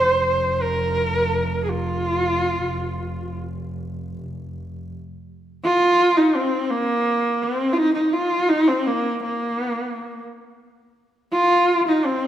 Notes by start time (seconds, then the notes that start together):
Already playing: F1 C5
0.62 A#4
1.64 G#4
1.70 F4
5.64 F4
6.17 D#4
6.35 C4
6.70 A#3
7.43 C4
7.73 F4
7.78 D#4
7.95 D#4
8.13 F4
8.49 D#4
8.68 C4
8.87 A#3
9.23 A#3
11.32 F4
11.88 D#4
12.05 C4